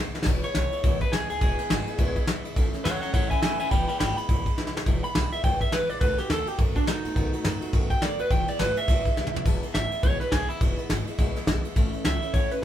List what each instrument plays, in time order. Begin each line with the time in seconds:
Already playing: steel-string acoustic guitar E3
0.00 upright bass C#2, steel-string acoustic guitar G#3 B3 E4
0.14 upright bass C#2, steel-string acoustic guitar E3 G#3 B3 E4, snare
0.22 upright bass E1, steel-string acoustic guitar E2 B2, kick, snare, crash
0.27 steel-string acoustic guitar E3 G#3 B3 E4
0.43 steel-string acoustic guitar E3 G#3 B3 E4, clean electric guitar C#5, muted upright bass stroke, ride
0.55 upright bass B1, steel-string acoustic guitar E3 G#3 B3 E4, snare, ride
0.72 steel-string acoustic guitar E3 G#3 B3 E4, ride
0.83 upright bass B1, steel-string acoustic guitar E2 B2 E3 G#3 B3 E4, kick, ride
1.01 steel-string acoustic guitar E3 G#3 B3 E4, clean electric guitar B4, muted upright bass stroke, kick, ride
1.12 upright bass C#2, steel-string acoustic guitar E3 G#3 B3 E4, clean electric guitar G#4, snare, ride
1.30 upright bass C#2, steel-string acoustic guitar E3 G#3 B3 E4, clean electric guitar G#4, ride
1.41 upright bass E1, steel-string acoustic guitar E2 B2 E3 G#3 B3 E4, clean electric guitar G#4, kick, ride
1.58 steel-string acoustic guitar E3 G#3 B3 E4, muted upright bass stroke, snare, ride
1.69 upright bass G#1, steel-string acoustic guitar E3 G#3 B3 E4, snare, ride
1.87 steel-string acoustic guitar E3 G#3 B3 E4, muted upright bass stroke, ride
1.98 upright bass B1, steel-string acoustic guitar E2 B2 E3 G#3 B3 E4, kick, ride
2.15 steel-string acoustic guitar E3 G#3 B3 E4, muted upright bass stroke, kick, ride
2.27 upright bass C#2, steel-string acoustic guitar E3 G#3 B3 E4, snare, ride
2.44 upright bass G#1, steel-string acoustic guitar E3 G#3 B3 E4, ride
2.56 upright bass A1, steel-string acoustic guitar A2 E3 A3 C#4 E4, kick, ride
2.73 steel-string acoustic guitar A3 C#4 E4, muted upright bass stroke, snare, ride
2.84 upright bass E2, steel-string acoustic guitar E3 A3 C#4 E4, clean electric guitar C#5 F#5, snare, ride
3.01 steel-string acoustic guitar A3 C#4 E4, clean electric guitar C#5 F#5, muted upright bass stroke, ride
3.13 upright bass E2, steel-string acoustic guitar A2 E3 A3 C#4 E4, clean electric guitar C#5 F#5, kick, ride
3.30 steel-string acoustic guitar A3 C#4 E4, clean electric guitar E5 G#5, kick, ride
3.42 upright bass F#2, steel-string acoustic guitar E3 A3 C#4 E4, clean electric guitar E5 G#5, snare, ride
3.59 upright bass F#2, steel-string acoustic guitar A3 C#4 E4, clean electric guitar E5 G#5, ride
3.70 upright bass E1, steel-string acoustic guitar E2 B2 E3 G#3 B3 E4, clean electric guitar G5 B5, kick, ride
3.87 steel-string acoustic guitar E3 G#3 B3 E4, clean electric guitar G5 B5, ride
3.99 upright bass G#1, steel-string acoustic guitar E3 G#3 B3 E4, clean electric guitar G5 B5, snare, ride
4.17 steel-string acoustic guitar E3 G#3 B3 E4, clean electric guitar B5, muted upright bass stroke, ride
4.28 upright bass B1, steel-string acoustic guitar E2 B2 E3 G#3 B3 E4, kick, ride
4.45 steel-string acoustic guitar E3 G#3 B3 E4, kick, ride
4.57 upright bass C#2, steel-string acoustic guitar E3 G#3 B3 E4, snare
4.67 snare
4.74 upright bass C#2, steel-string acoustic guitar E3 G#3 B3 E4, snare
4.86 upright bass E1, steel-string acoustic guitar E2 B2 E3 G#3 B3 E4, kick, ride
5.03 steel-string acoustic guitar E3 G#3 B3 E4, clean electric guitar B5, muted upright bass stroke, ride
5.14 upright bass B1, steel-string acoustic guitar E3 G#3 B3 E4, snare, ride
5.32 steel-string acoustic guitar E3 G#3 B3 E4, clean electric guitar E5, muted upright bass stroke, ride
5.44 upright bass B1, steel-string acoustic guitar E2 B2 E3 G#3 B3 E4, clean electric guitar G5, kick, ride
5.60 steel-string acoustic guitar E3 G#3 B3 E4, clean electric guitar E5, muted upright bass stroke, kick, ride
5.72 upright bass C#2, steel-string acoustic guitar E3 G#3 B3 E4, clean electric guitar B4, snare, ride
5.89 upright bass A#1, steel-string acoustic guitar E3 G#3 B3 E4, clean electric guitar D5, ride
6.01 upright bass B1, steel-string acoustic guitar B2 D#3 A3 B3 F#4, clean electric guitar B4, kick, ride
6.18 steel-string acoustic guitar A3 B3 F#4, clean electric guitar G4, muted upright bass stroke, snare, ride
6.30 upright bass D#2, steel-string acoustic guitar D#3 A3 B3 F#4, clean electric guitar A4, snare, ride
6.46 steel-string acoustic guitar A3 B3 F#4, clean electric guitar G4, ride
6.58 upright bass F#2, steel-string acoustic guitar B2 D#3 A3 B3 F#4, kick, ride
6.75 steel-string acoustic guitar A3 B3 F#4, clean electric guitar D4, muted upright bass stroke, kick, ride
6.86 upright bass G#2, steel-string acoustic guitar D#3 A3 B3 F#4, clean electric guitar D#4, snare, ride
7.04 upright bass A2, steel-string acoustic guitar A3 B3 F#4, ride
7.16 upright bass B1, steel-string acoustic guitar B2 D#3 A3 B3 F#4, kick, ride
7.32 steel-string acoustic guitar A3 B3 F#4, muted upright bass stroke, ride
7.44 upright bass F#2, steel-string acoustic guitar D#3 A3 B3 F#4, snare, ride
7.61 steel-string acoustic guitar A3 B3 F#4, muted upright bass stroke, ride
7.73 upright bass F#2, steel-string acoustic guitar B2 D#3 A3 B3 F#4, kick, ride
7.90 steel-string acoustic guitar A3 B3 F#4, clean electric guitar G5, kick, ride
8.01 upright bass A2, steel-string acoustic guitar D#3 A3 B3 F#4, clean electric guitar D5, snare, ride
8.19 upright bass D#2, steel-string acoustic guitar A3 B3 F#4, clean electric guitar B4, ride
8.31 upright bass E1, steel-string acoustic guitar E2 B2 E3 G#3 B3 E4, clean electric guitar G5, kick, ride
8.48 steel-string acoustic guitar E3 G#3 B3 E4, clean electric guitar D5, ride
8.59 upright bass G#1, steel-string acoustic guitar E3 G#3 B3 E4, clean electric guitar B4, snare, ride
8.76 steel-string acoustic guitar E3 G#3 B3 E4, clean electric guitar E5, muted upright bass stroke, ride
8.88 upright bass B1, steel-string acoustic guitar E2 B2 E3 G#3 B3 E4, kick, ride
9.05 steel-string acoustic guitar E3 G#3 B3 E4, muted upright bass stroke, kick, ride
9.17 upright bass C#2, steel-string acoustic guitar E3 G#3 B3 E4, snare
9.27 mid tom
9.34 upright bass C#2, steel-string acoustic guitar E3 G#3 B3 E4, floor tom
9.45 upright bass E1, steel-string acoustic guitar E2 B2 E3 G#3 B3 E4, kick, crash
9.62 steel-string acoustic guitar E3 G#3 B3 E4, ride
9.74 upright bass G#1, steel-string acoustic guitar E3 G#3 B3 E4, clean electric guitar E5, snare, ride
9.91 steel-string acoustic guitar E3 G#3 B3 E4, muted upright bass stroke, ride
10.03 upright bass B1, steel-string acoustic guitar E2 B2 E3 G#3 B3 E4, clean electric guitar C#5, kick, ride
10.20 steel-string acoustic guitar E3 G#3 B3 E4, clean electric guitar B4, muted upright bass stroke, snare, ride
10.31 upright bass B1, steel-string acoustic guitar E3 G#3 B3 E4, clean electric guitar G#4, kick, snare, ride
10.49 steel-string acoustic guitar E3 G#3 B3 E4, clean electric guitar E4, muted upright bass stroke, ride
10.61 upright bass E1, steel-string acoustic guitar E2 B2 E3 G#3 B3 E4, kick, ride
10.77 steel-string acoustic guitar E3 G#3 B3 E4, muted upright bass stroke, ride
10.89 upright bass G#1, steel-string acoustic guitar E3 G#3 B3 E4, snare, ride
11.06 steel-string acoustic guitar E3 G#3 B3 E4, muted upright bass stroke, ride
11.18 upright bass B1, steel-string acoustic guitar E2 B2 E3 G#3 B3 E4, kick, ride
11.35 steel-string acoustic guitar E3 G#3 B3 E4, muted upright bass stroke, snare, ride
11.47 upright bass B1, steel-string acoustic guitar E3 G#3 B3 E4, kick, snare, ride
11.64 steel-string acoustic guitar E3 G#3 B3 E4, muted upright bass stroke, ride
11.75 upright bass A1, steel-string acoustic guitar A2 E3 A3 C#4 E4, kick, ride
11.93 steel-string acoustic guitar A3 C#4 E4, muted upright bass stroke, ride
12.04 upright bass C#2, steel-string acoustic guitar E3 A3 C#4 E4, clean electric guitar E5, snare, ride
12.22 steel-string acoustic guitar A3 C#4 E4, muted upright bass stroke, ride
12.34 upright bass E2, steel-string acoustic guitar A2 E3 A3 C#4 E4, clean electric guitar C#5, kick, ride
12.51 steel-string acoustic guitar A3 C#4 E4, clean electric guitar B4, muted upright bass stroke, snare, ride